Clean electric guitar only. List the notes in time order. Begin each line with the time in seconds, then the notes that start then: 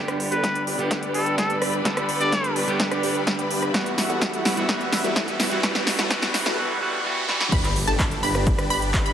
Already playing: D3 G3 B3 G4
0.78 D3 G3 B3 G4
1.84 D3 G3 B3 A4
2.67 D3 G3 B3 G4
3.73 E3 G3 B3 F#4
4.56 E3 G3 B3 F#4
4.67 E3 G3 B3 F#4
5.50 E3 G3 B3 F#4
5.62 E3 G3 B3 F#4
6.09 E3 G3 B3 F#4
6.57 E3 G3 B3 F#4
6.80 E3 G3 B3 F#4
7.04 E3 G3 B3 F#4
7.27 E3 G3 B3 F#4